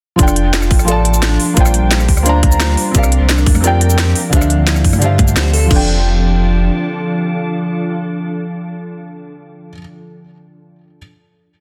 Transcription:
0.16 sub bass F1, felt piano F3 F4 A4, ambient pad F3 D4 A4, synth pluck D4, kick, closed hi-hat, cabasa
0.21 felt piano D5 G5
0.28 cross-stick, cabasa
0.36 closed hi-hat
0.53 synth pluck F4, snare, closed hi-hat, cabasa
0.62 cross-stick, cabasa
0.71 sub bass A1, kick, open hi-hat
0.79 cross-stick, cabasa
0.85 felt piano F3 F4 A4, synth pluck A4, closed hi-hat, cabasa
0.90 felt piano D5 A5
1.05 closed hi-hat
1.14 cabasa
1.22 synth pluck D4, snare, closed hi-hat, cabasa
1.39 ambient pad G3 D4 C5, open hi-hat
1.54 sub bass A#1, felt piano A#3 F4 C5, synth pluck F4, kick, closed hi-hat, cabasa
1.59 felt piano D5 G5
1.65 cross-stick, cabasa
1.74 closed hi-hat
1.83 sub bass A#1
1.91 synth pluck G4, snare, closed hi-hat, cabasa
2.00 cross-stick, cabasa
2.09 sub bass D2, kick, open hi-hat
2.17 cross-stick, cabasa
2.23 felt piano A#3 F4 C5, synth pluck D4, closed hi-hat, cabasa
2.28 felt piano D5 A#5
2.43 kick, closed hi-hat
2.52 cabasa
2.60 synth pluck F4, snare, closed hi-hat, cabasa
2.77 open hi-hat
2.91 sub bass C2, ambient pad F3 A#4, felt piano C4 G4 A#4, synth pluck G4, kick, closed hi-hat, cabasa
2.97 felt piano D5 F5
3.03 cross-stick, cabasa
3.12 closed hi-hat
3.21 sub bass C2
3.29 synth pluck D4, snare, closed hi-hat, cabasa
3.38 cross-stick, cabasa
3.46 sub bass F2, kick, open hi-hat
3.55 cross-stick, high conga, cabasa
3.61 felt piano C4 G4 A#4, synth pluck F4, closed hi-hat, cabasa
3.65 felt piano D5 G5
3.81 closed hi-hat
3.90 cabasa
3.98 synth pluck G4, snare, closed hi-hat, cabasa
4.15 ambient pad C4 G4, open hi-hat
4.30 sub bass D2, felt piano D3 D4 G4, synth pluck D4, kick, closed hi-hat, cabasa
4.34 felt piano C5 E5 F5
4.41 cross-stick, cabasa
4.50 closed hi-hat
4.59 sub bass D2
4.67 synth pluck E4, snare, closed hi-hat, cabasa
4.76 cross-stick, cabasa
4.84 sub bass G2, kick, open hi-hat
4.93 cross-stick, high conga, cabasa
4.99 felt piano D3 D4 G4, synth pluck F4, closed hi-hat, cabasa
5.03 felt piano C5 E5 F5
5.18 kick, closed hi-hat, high conga
5.28 cabasa
5.36 sub bass D2, synth pluck C5, snare, closed hi-hat, cabasa
5.53 synth pluck A4, open hi-hat
5.66 felt piano F3 F4
5.71 sub bass F1, ambient pad F3 D4 A4, synth pluck D4, felt piano A4 D5, kick, crash
5.76 felt piano G5

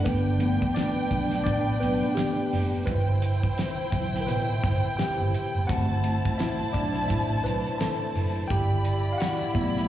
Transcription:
0.04 fingered electric bass G1, tine electric piano B3 B4, violin section D4 B4 G5, kick, closed hi-hat
0.39 tine electric piano F3 A3 B3, closed hi-hat
0.62 kick
0.74 tine electric piano D4 D5, snare, closed hi-hat
0.98 muted fingered electric bass stroke
1.11 fingered electric bass B1, kick, closed hi-hat
1.31 snare, closed hi-hat
1.44 fingered electric bass A1, tine electric piano D4 D5, kick, closed hi-hat
1.80 fingered electric bass B1, tine electric piano B3 B4, closed hi-hat
2.03 closed hi-hat
2.15 tine electric piano G3 G4, snare, closed hi-hat
2.53 fingered electric bass F#1, snare, open hi-hat
2.86 fingered electric bass G1, tine electric piano B2 B4, violin section E4 C5 G5, kick, closed hi-hat
3.22 closed hi-hat
3.43 kick
3.58 snare, closed hi-hat
3.79 muted fingered electric bass stroke
3.92 fingered electric bass B1, tine electric piano B2 D3 E3, kick, closed hi-hat
4.14 snare
4.20 tine electric piano A#4
4.26 fingered electric bass A1, tine electric piano B2 B4, closed hi-hat
4.64 fingered electric bass G1, kick, closed hi-hat
4.97 tine electric piano G4 G5, muted fingered electric bass stroke, snare, closed hi-hat
5.20 fingered electric bass G1
5.34 closed hi-hat
5.54 fingered electric bass F#1
5.67 fingered electric bass G1, tine electric piano G3 A3 C4 F#4 F#5, violin section E4 C5 A5, kick, closed hi-hat
6.04 closed hi-hat
6.25 kick
6.38 tine electric piano E4 E5, snare, closed hi-hat
6.60 muted fingered electric bass stroke
6.73 fingered electric bass B1, tine electric piano D4 D5, kick, closed hi-hat
6.95 closed hi-hat
7.08 fingered electric bass A1, tine electric piano E4 E5, kick, closed hi-hat
7.44 fingered electric bass B1, tine electric piano B4, closed hi-hat
7.66 closed hi-hat
7.78 tine electric piano A4 A5, snare, closed hi-hat
8.15 fingered electric bass F#1, open hi-hat
8.48 fingered electric bass G1, violin section E4 D5 B5, tine electric piano G4 G5, kick, closed hi-hat
8.85 closed hi-hat
9.13 tine electric piano F5
9.18 tine electric piano F#4 F#5, snare, closed hi-hat
9.42 muted fingered electric bass stroke
9.53 fingered electric bass B1, tine electric piano E3 A3 B3 E4 E5, kick, closed hi-hat
9.77 snare

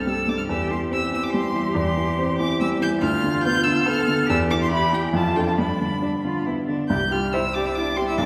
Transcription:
Already playing: grand piano C2 G2 C4, cello A4
0.07 grand piano G3, violin E6
0.28 grand piano G2, violin D6
0.38 violin F6
0.48 grand piano E2, cello G4, violin E6
0.70 grand piano E3, violin C6
0.90 grand piano C4, cello G4, violin E6
1.13 grand piano E3, violin E6
1.23 violin D6
1.32 grand piano G3, violin C6
1.55 grand piano E3
1.75 grand piano E2, violin C6
1.97 grand piano E3
2.18 grand piano C4
2.39 grand piano E3, violin D6
2.60 grand piano G3, violin E6
2.81 grand piano E3, violin G6
3.02 grand piano D2, cello F4, violin F6
3.24 grand piano D3
3.44 grand piano B3, violin G6
3.63 grand piano D3, violin E6
3.85 grand piano B3, cello A4, violin F6
4.08 grand piano D3
4.28 grand piano E2, cello G4, violin E6
4.51 grand piano E3, violin D6
4.62 violin C6
4.71 grand piano E4, violin B5
4.93 grand piano E3, violin G5
5.13 grand piano F2, cello F4, violin A5
5.36 grand piano D4 A4, violin G5
5.47 violin A5
5.58 grand piano G2, cello D4, violin B5
5.81 grand piano D3
6.02 grand piano D4, cello D4
6.24 grand piano D3, cello F4
6.47 grand piano B3, cello E4
6.68 grand piano D3, cello D4
6.89 grand piano C2, cello G4, violin G6
7.11 cello F4, grand piano G4, violin F6
7.33 cello E4, grand piano C5, violin E6
7.55 cello D4, grand piano G4, violin D6
7.66 cello E4, violin E6
7.75 cello D4, grand piano E4, violin D6
7.97 cello C4, grand piano G4, violin C6
8.08 cello E4, violin E6
8.18 grand piano B1, cello D4, violin D6

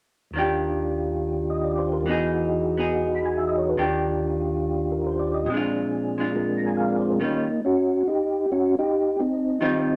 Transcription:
0.31 tonewheel organ D#2 D#3, hollow-body jazz guitar D#3
0.36 hollow-body jazz guitar A#3 D4 G4, tonewheel organ D4 F4
0.42 tonewheel organ G4
1.50 tonewheel organ D#5
1.65 tonewheel organ D5
1.79 tonewheel organ C5
1.92 tonewheel organ A#4
2.01 tonewheel organ E2 E3
2.06 hollow-body jazz guitar E3 B3 D#4, tonewheel organ D#4 F#4
2.11 hollow-body jazz guitar G#4, tonewheel organ G#4
2.77 hollow-body jazz guitar B3 D#4 G#4
3.14 tonewheel organ B5
3.26 tonewheel organ G#5
3.37 tonewheel organ E5
3.48 tonewheel organ D#5
3.58 tonewheel organ C#5
3.69 tonewheel organ B4
3.76 tonewheel organ D#2 D#3 D4 F4, hollow-body jazz guitar D#3 A#3 D4 G4
3.81 tonewheel organ G4
4.92 tonewheel organ A#4
5.06 tonewheel organ C5
5.19 tonewheel organ D5
5.34 tonewheel organ D#5
5.43 tonewheel organ A#2 F3, hollow-body jazz guitar A#2
5.48 hollow-body jazz guitar G#3, tonewheel organ C4 D4
5.54 hollow-body jazz guitar D4 F4, tonewheel organ G#4
6.18 hollow-body jazz guitar G#3 D4 F4
6.33 tonewheel organ G#3 D4 F4 A#4
6.57 tonewheel organ A#5
6.66 tonewheel organ G#5
6.77 tonewheel organ F5
6.88 tonewheel organ D5
7.00 tonewheel organ C5
7.09 tonewheel organ A#4
7.15 tonewheel organ D4
7.20 hollow-body jazz guitar D#3 G3 C#4 F4, tonewheel organ A#3 D#4
7.65 tonewheel organ C#4 F#4
8.08 tonewheel organ D#4 G4
8.52 tonewheel organ C#4 F#4
8.79 tonewheel organ D#4 G4
9.20 tonewheel organ C4 D#4
9.61 hollow-body jazz guitar D#3 G3 F4, tonewheel organ C4 D#4

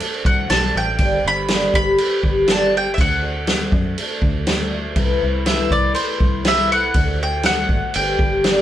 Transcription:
Already playing: mandolin A5
0.00 twelve-string acoustic guitar D3 A3 D4 F#4, crash
0.24 fingered electric bass C2, twelve-string acoustic guitar A3 D4 F#4, mandolin F#5, kick
0.48 fingered electric bass B1, twelve-string acoustic guitar D3 A3 D4 F#4, mandolin A5, snare, crash
0.75 fingered electric bass A1, twelve-string acoustic guitar A3 D4 F#4, mandolin G5
0.98 fingered electric bass G1, twelve-string acoustic guitar G2 D3 G3 B3 D4 G4, kick, crash
1.24 fingered electric bass G1, twelve-string acoustic guitar G3 B3 D4 G4, mandolin B5
1.48 twelve-string acoustic guitar G2 D3 G3 B3 D4 G4, snare, crash
1.73 fingered electric bass G1, twelve-string acoustic guitar G3 B3 D4 G4, mandolin B5, kick
1.97 twelve-string acoustic guitar G3 B3 D4 G4, crash
2.22 fingered electric bass G1, twelve-string acoustic guitar G3 B3 D4 G4, kick
2.46 twelve-string acoustic guitar G2 D3 G3 B3 D4 G4, snare, crash
2.51 mandolin A5
2.74 twelve-string acoustic guitar G3 B3 D4 G4, mandolin G5
2.94 twelve-string acoustic guitar D3, mandolin E5
2.98 fingered electric bass D2, twelve-string acoustic guitar A3 D4 F#4, mandolin F#5, kick, crash
3.23 twelve-string acoustic guitar A3 D4 F#4
3.47 twelve-string acoustic guitar D3 A3 D4 F#4, snare, crash
3.72 fingered electric bass F#2, twelve-string acoustic guitar D4 F#4, kick
3.76 twelve-string acoustic guitar A3
3.98 twelve-string acoustic guitar D3 A3 D4 F#4, crash
4.22 fingered electric bass D2, twelve-string acoustic guitar A3 D4 F#4, kick
4.47 twelve-string acoustic guitar D3 A3 D4 F#4, snare, crash
4.71 twelve-string acoustic guitar A3 D4 F#4
4.95 fingered electric bass C2, twelve-string acoustic guitar C3 E3 A3 B3 E4, kick, crash
5.21 fingered electric bass C2, twelve-string acoustic guitar A3 B3 E4
5.45 twelve-string acoustic guitar C3 E3 A3 B3 E4, mandolin E5, snare, crash
5.69 fingered electric bass C2, twelve-string acoustic guitar A3 B3 E4, mandolin D5, kick
5.94 twelve-string acoustic guitar E3 A3 B3, mandolin C5, crash
5.98 twelve-string acoustic guitar E4
6.19 fingered electric bass C2, twelve-string acoustic guitar A3 B3 E4, kick
6.43 twelve-string acoustic guitar C3 E3 A3 B3 E4, snare, crash
6.48 mandolin E5
6.70 twelve-string acoustic guitar A3 B3 E4, mandolin F#5
6.94 fingered electric bass D2, twelve-string acoustic guitar D3 A3 D4 F#4, kick, crash
7.20 twelve-string acoustic guitar A3 D4 F#4, mandolin G5
7.43 twelve-string acoustic guitar D3 A3 D4 F#4, mandolin F#5, snare, crash
7.69 fingered electric bass G#1, twelve-string acoustic guitar D4 F#4, kick
7.74 twelve-string acoustic guitar A3
7.94 fingered electric bass G1, twelve-string acoustic guitar G3 B3 D4, mandolin G5, crash
7.99 twelve-string acoustic guitar G4
8.19 fingered electric bass G1, twelve-string acoustic guitar B3 D4 G4, kick
8.24 twelve-string acoustic guitar G3
8.44 twelve-string acoustic guitar G2 D3 G3 B3 D4 G4, snare, crash

